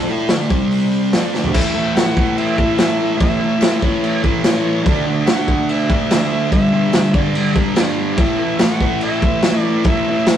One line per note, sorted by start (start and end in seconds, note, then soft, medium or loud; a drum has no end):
0.08 0.30 A3 medium
0.08 0.27 D4 medium
0.08 0.30 E4 loud
0.08 0.28 A4 medium
0.08 0.28 D5 medium
0.08 tambourine soft
0.12 0.31 A4 loud
0.20 tambourine soft
0.28 0.51 D3 medium
0.28 0.51 A3 loud
0.28 0.50 D4 medium
0.28 0.52 D4 loud
0.28 0.50 A4 medium
0.28 0.50 D5 medium
0.28 snare loud
0.28 open hi-hat medium
0.28 tambourine loud
0.50 1.12 C3 medium
0.50 1.13 G3 loud
0.50 1.08 C4 medium
0.50 1.13 C4 medium
0.50 1.09 G4 medium
0.50 1.09 C5 medium
0.50 kick loud
0.50 tambourine medium
0.61 tambourine soft
0.71 1.11 G5 medium
0.71 open hi-hat medium
0.71 tambourine soft
0.82 tambourine soft
0.92 tambourine medium
1.04 tambourine soft
1.12 1.33 F3 medium
1.12 1.34 C4 medium
1.12 1.51 D4 medium
1.12 1.34 F4 loud
1.12 1.51 A4 medium
1.12 1.51 D5 medium
1.12 1.52 D5 medium
1.12 1.51 A5 medium
1.12 snare loud
1.12 open hi-hat medium
1.12 tambourine medium
1.34 1.54 D3 medium
1.34 1.55 A3 medium
1.34 1.55 D4 loud
1.34 snare medium
1.34 tambourine medium
1.44 floor tom medium
1.53 1.96 A2 loud
1.53 1.78 E3 medium
1.53 1.93 E4 loud
1.53 1.94 A4 medium
1.53 1.61 B4 medium
1.53 1.62 C#5 medium
1.53 1.94 C#5 loud
1.53 1.97 E5 loud
1.53 kick loud
1.53 crash loud
1.53 crash medium
1.58 1.74 A3 medium
1.75 1.98 E3 medium
1.75 1.99 A3 medium
1.96 2.78 A2 loud
1.96 2.20 E3 loud
1.96 2.16 A3 loud
1.96 2.34 E4 medium
1.96 2.35 A4 medium
1.96 2.36 C#5 medium
1.96 2.37 F#5 loud
1.96 snare loud
1.96 tambourine medium
1.96 crash medium
2.16 2.61 E3 medium
2.16 2.58 A3 medium
2.16 kick loud
2.38 2.76 E4 medium
2.38 2.76 A4 medium
2.38 2.77 C#5 medium
2.38 3.16 E5 loud
2.38 crash medium
2.58 2.81 A3 medium
2.58 kick medium
2.62 2.79 E3 medium
2.78 3.16 A2 medium
2.78 3.19 E3 medium
2.78 3.21 A3 loud
2.78 3.17 E4 medium
2.78 3.18 A4 medium
2.78 3.18 C#5 medium
2.78 snare loud
2.78 tambourine medium
2.78 crash medium
3.17 3.58 A2 loud
3.17 3.43 E3 loud
3.17 3.86 E5 loud
3.17 kick loud
3.17 crash medium
3.21 3.40 A3 loud
3.21 3.59 E4 loud
3.21 3.60 A4 medium
3.21 3.60 C#5 loud
3.40 3.60 E3 medium
3.40 3.62 A3 medium
3.59 4.01 A2 loud
3.59 3.82 E3 loud
3.59 snare loud
3.59 tambourine loud
3.59 crash medium
3.63 3.79 A3 loud
3.63 4.01 E4 medium
3.63 4.01 A4 medium
3.63 4.02 C#5 medium
3.80 4.25 E3 medium
3.80 4.22 A3 medium
3.80 kick medium
3.84 4.25 C#5 medium
4.02 4.41 E4 medium
4.02 4.42 A4 medium
4.02 4.41 E5 medium
4.02 crash medium
4.23 4.43 E3 medium
4.23 4.45 A3 medium
4.23 kick medium
4.43 4.84 A2 medium
4.43 4.85 E3 medium
4.43 4.86 A3 medium
4.43 4.83 E4 medium
4.43 4.83 A4 medium
4.43 4.83 C#5 medium
4.43 4.86 C#5 medium
4.43 snare loud
4.43 tambourine loud
4.43 crash medium
4.84 5.27 D3 loud
4.84 5.09 A3 loud
4.84 5.24 F#4 loud
4.84 5.24 A4 medium
4.84 5.30 D5 loud
4.84 5.24 D5 loud
4.84 kick loud
4.84 crash medium
4.89 5.06 D4 loud
5.07 5.29 A3 medium
5.07 5.32 D4 medium
5.26 5.69 D3 loud
5.26 5.65 F#4 medium
5.26 5.65 A4 medium
5.26 5.65 D5 loud
5.26 5.71 F#5 medium
5.26 snare loud
5.26 tambourine loud
5.26 crash medium
5.30 5.51 A3 loud
5.30 5.48 D4 loud
5.48 5.89 D4 medium
5.48 kick medium
5.52 5.93 A3 medium
5.66 6.06 F#4 medium
5.66 6.06 A4 medium
5.66 6.07 D5 medium
5.66 6.52 E5 loud
5.66 crash medium
5.90 6.15 D4 medium
5.90 kick medium
5.95 6.12 A3 medium
6.09 6.51 D3 medium
6.09 6.48 F#4 medium
6.09 6.49 A4 medium
6.09 6.49 D5 medium
6.09 snare loud
6.09 tambourine loud
6.09 crash medium
6.13 6.52 A3 medium
6.13 6.53 D4 medium
6.51 6.93 G2 medium
6.51 6.76 D3 medium
6.51 6.90 G4 loud
6.51 6.90 B4 medium
6.51 6.91 D5 loud
6.51 7.11 E5 loud
6.51 kick loud
6.51 crash medium
6.56 6.72 G3 loud
6.73 6.96 D3 medium
6.73 6.97 G3 medium
6.92 7.35 G2 loud
6.92 7.32 G4 medium
6.92 7.32 B4 medium
6.92 7.32 D5 medium
6.92 snare loud
6.92 tambourine loud
6.92 crash medium
6.97 7.17 D3 loud
6.97 7.13 G3 loud
7.14 7.54 G3 medium
7.14 7.53 D5 medium
7.14 kick loud
7.19 7.57 D3 medium
7.33 7.73 G4 medium
7.33 7.73 B4 medium
7.33 7.73 D5 medium
7.33 crash medium
7.55 7.77 D3 medium
7.55 7.78 G3 medium
7.55 kick medium
7.75 8.16 G2 medium
7.75 8.17 D3 medium
7.75 8.18 G3 medium
7.75 8.15 G4 medium
7.75 8.15 B4 medium
7.75 8.16 D5 medium
7.75 8.20 D5 medium
7.75 snare loud
7.75 tambourine loud
7.75 crash medium
8.16 8.59 A2 loud
8.16 8.43 E3 loud
8.16 8.56 E4 loud
8.16 8.57 A4 medium
8.16 8.57 C#5 loud
8.16 8.61 E5 loud
8.16 kick loud
8.16 crash medium
8.21 8.39 A3 loud
8.39 8.61 E3 medium
8.39 8.62 A3 medium
8.59 9.44 A2 loud
8.59 8.85 E3 loud
8.59 8.81 A3 loud
8.59 8.98 E4 medium
8.59 8.99 A4 medium
8.59 8.99 C#5 medium
8.59 9.01 F#5 loud
8.59 snare loud
8.59 tambourine loud
8.59 crash medium
8.80 9.21 A3 medium
8.80 kick medium
8.86 9.25 E3 medium
9.01 9.41 E4 medium
9.01 9.41 A4 medium
9.01 9.41 C#5 medium
9.01 9.61 E5 loud
9.01 crash medium
9.22 9.44 E3 medium
9.22 9.47 A3 medium
9.22 kick loud
9.42 9.84 A2 medium
9.42 9.86 E3 medium
9.42 9.82 E4 medium
9.42 9.82 A4 medium
9.42 9.83 C#5 medium
9.42 snare loud
9.42 tambourine loud
9.42 crash medium
9.47 9.88 A3 medium
9.61 9.82 D5 loud
9.84 10.26 A2 loud
9.84 10.09 E3 loud
9.84 10.25 E4 loud
9.84 10.25 A4 medium
9.84 10.25 C#5 loud
9.84 kick loud
9.84 crash medium
9.88 10.07 A3 loud
9.88 10.37 E5 loud
10.07 10.29 E3 medium
10.07 10.31 A3 medium
10.26 10.37 A2 medium
10.26 10.37 E3 loud
10.26 10.37 E4 medium
10.26 10.37 A4 medium
10.26 10.37 B4 medium
10.26 snare loud
10.26 tambourine loud
10.26 crash medium
10.31 10.37 A3 loud